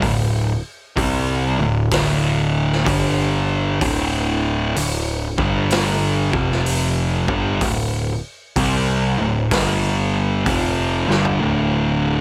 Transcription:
0.02 picked electric bass D1, distorted electric guitar D2 A2, kick, open hi-hat
0.96 picked electric bass C2, distorted electric guitar C3 G3 C4, kick, open hi-hat
1.58 picked electric bass D1, distorted electric guitar D2 A2
1.91 picked electric bass D1, distorted electric guitar D2 A2 D3, kick, snare, open hi-hat
2.73 snare
2.85 picked electric bass G1, distorted electric guitar G2 D3 G3, kick, open hi-hat
3.80 picked electric bass D1, distorted electric guitar D2 A2 D3, kick, open hi-hat
4.76 picked electric bass D1, distorted electric guitar D2 A2, open hi-hat
5.37 picked electric bass G1, distorted electric guitar G2 D3 G3, kick
5.71 snare, open hi-hat
6.33 picked electric bass F1, distorted electric guitar F2 C3 F3, kick
6.52 snare
6.66 open hi-hat
7.28 picked electric bass G1, distorted electric guitar G2 D3 G3, kick
7.61 picked electric bass D1, distorted electric guitar D2 A2, kick, open hi-hat
8.56 picked electric bass C2, distorted electric guitar C3 G3 C4, kick, open hi-hat
9.19 picked electric bass D1, distorted electric guitar D2 A2
9.51 picked electric bass G1, distorted electric guitar G2 D3 G3, kick, snare, open hi-hat
10.46 picked electric bass F1, distorted electric guitar F2 C3 F3, kick, open hi-hat
11.07 picked electric bass G1, distorted electric guitar G2 D3 G3, snare
11.25 floor tom
11.40 picked electric bass D1, distorted electric guitar D2 A2 D3

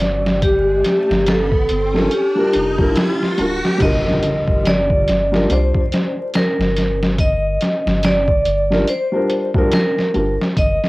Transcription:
Already playing: analog synth bass G1, vibraphone D5, riser
0.00 snare, closed hi-hat
0.26 snare
0.42 vibraphone G4, kick, closed hi-hat
0.84 snare, closed hi-hat
1.11 analog synth bass G1, snare
1.26 vibraphone A4, snare, closed hi-hat
1.52 kick
1.69 analog synth bass G1, closed hi-hat
1.94 felt piano G3 D4 F4 A#4, snare
2.11 vibraphone G4, closed hi-hat
2.35 felt piano G3 D4 F4 A#4
2.54 analog synth bass F1, closed hi-hat
2.78 analog synth bass G1, felt piano G3 D4 F4 A#4, kick
2.96 snare, closed hi-hat
3.23 snare
3.38 analog synth bass D1, felt piano G3 D4 F4 A#4, closed hi-hat
3.65 snare
3.78 analog synth bass G1, felt piano D3 G3, kick, closed hi-hat, crash, impact
3.82 felt piano F4 A#4, vibraphone D#5
4.07 snare
4.23 closed hi-hat
4.48 analog synth bass G1, kick
4.65 vibraphone D5, snare, closed hi-hat
4.90 kick
5.08 analog synth bass G1, snare, closed hi-hat
5.32 felt piano G3 D4 F4 A#4, snare
5.49 analog synth bass C2, felt piano G3 D4 F4 D5, vibraphone C5, closed hi-hat
5.74 kick
5.92 snare, closed hi-hat
6.34 vibraphone A#4, snare, closed hi-hat
6.59 analog synth bass G1, snare
6.76 snare, closed hi-hat
7.03 snare
7.18 vibraphone D#5, kick, closed hi-hat
7.61 snare, closed hi-hat
7.87 analog synth bass G1, snare
8.03 vibraphone D5, snare, closed hi-hat
8.28 kick
8.45 analog synth bass G1, closed hi-hat
8.70 felt piano G3 D4 F4 A#4, snare
8.87 vibraphone C5, closed hi-hat
9.12 felt piano G3 D4 F4 A#4
9.30 closed hi-hat
9.54 felt piano G3 D4 F4 A#4, kick
9.72 vibraphone A#4, snare, closed hi-hat
9.98 snare
10.14 analog synth bass G1, felt piano G3 D4 F4 A#4, closed hi-hat
10.41 snare
10.57 analog synth bass G1, vibraphone D#5, kick, closed hi-hat
10.84 snare

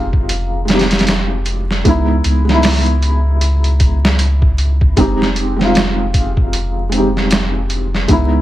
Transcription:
Already playing: sub bass F1, felt piano G#3 C4 D#4 F4 G4
0.13 kick
0.29 closed hi-hat
0.65 felt piano G#3 C4, closed hi-hat
0.70 felt piano D#4 G4, snare
0.79 snare, closed hi-hat
0.91 snare, closed hi-hat
0.99 snare, closed hi-hat
1.07 snare, closed hi-hat
1.46 closed hi-hat
1.71 snare
1.85 sub bass C#2, felt piano G#3 B3 D#4 E4, kick, closed hi-hat
2.24 sub bass C#2, closed hi-hat
2.45 felt piano G#3 B3
2.49 felt piano D#4 E4, snare
2.63 snare, open hi-hat
2.86 closed hi-hat
3.02 closed hi-hat
3.41 closed hi-hat
3.64 closed hi-hat
3.80 kick, closed hi-hat
4.05 snare
4.19 closed hi-hat
4.42 kick
4.58 closed hi-hat
4.81 kick
4.97 sub bass F1, felt piano G#3 C4 D#4, kick, closed hi-hat
5.01 felt piano G4
5.22 snare
5.36 closed hi-hat
5.56 felt piano G#3 C4
5.61 felt piano D#4 F4, snare
5.75 snare, closed hi-hat
6.14 kick, closed hi-hat
6.37 kick
6.53 closed hi-hat
6.89 felt piano G#3 C4, closed hi-hat
6.95 felt piano D#4 G4
7.17 snare
7.31 snare, closed hi-hat
7.70 closed hi-hat
7.94 snare
8.08 sub bass C#2, felt piano G#3 B3 D#4, kick, closed hi-hat
8.12 felt piano E4

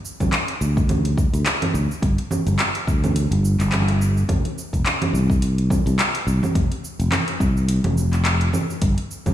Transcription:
0.05 cabasa
0.20 fretless electric bass G1, kick, closed hi-hat, low conga, cabasa
0.33 clap, closed hi-hat, cabasa
0.48 closed hi-hat
0.61 fretless electric bass D2, cabasa
0.77 kick, cabasa
0.89 closed hi-hat, low conga, cabasa
1.05 closed hi-hat
1.18 kick, cabasa
1.33 fretless electric bass D2, closed hi-hat, cabasa
1.46 clap, closed hi-hat, cabasa
1.62 closed hi-hat, low conga
1.74 fretless electric bass D2, cabasa
1.91 cabasa
2.02 fretless electric bass G1, kick, closed hi-hat, cabasa
2.18 closed hi-hat
2.31 low conga, cabasa
2.47 fretless electric bass G1, closed hi-hat, cabasa
2.59 clap, closed hi-hat, cabasa
2.75 closed hi-hat
2.87 fretless electric bass D2, kick, cabasa
3.04 closed hi-hat, low conga, cabasa
3.16 closed hi-hat, cabasa
3.31 fretless electric bass G1, closed hi-hat
3.45 cabasa
3.59 fretless electric bass G1, clap, closed hi-hat, cabasa
3.72 clap, closed hi-hat, low conga, cabasa
3.88 closed hi-hat
4.01 cabasa
4.17 cabasa
4.29 fretless electric bass F1, kick, closed hi-hat, low conga, cabasa
4.45 closed hi-hat
4.58 cabasa
4.73 fretless electric bass F1, kick, closed hi-hat, cabasa
4.86 clap, closed hi-hat, cabasa
5.02 closed hi-hat, low conga
5.13 fretless electric bass C2, cabasa
5.30 kick, cabasa
5.42 closed hi-hat, cabasa
5.58 closed hi-hat
5.70 kick, low conga, cabasa
5.86 fretless electric bass C2, closed hi-hat, cabasa
5.99 clap, closed hi-hat, cabasa
6.15 closed hi-hat
6.27 fretless electric bass C2, cabasa
6.43 low conga, cabasa
6.55 fretless electric bass F1, kick, closed hi-hat, cabasa
6.72 closed hi-hat
6.85 cabasa
6.99 fretless electric bass F1, closed hi-hat, cabasa
7.12 clap, closed hi-hat, low conga, cabasa
7.28 closed hi-hat
7.40 fretless electric bass C2, kick, cabasa
7.57 cabasa
7.69 closed hi-hat, cabasa
7.84 fretless electric bass F1, closed hi-hat, low conga
7.98 cabasa
8.13 clap, closed hi-hat, cabasa
8.25 clap, closed hi-hat, cabasa
8.41 closed hi-hat
8.53 low conga, cabasa
8.70 cabasa
8.82 fretless electric bass G1, kick, closed hi-hat, cabasa
8.98 closed hi-hat
9.11 cabasa
9.26 fretless electric bass G1, kick, closed hi-hat, low conga, cabasa

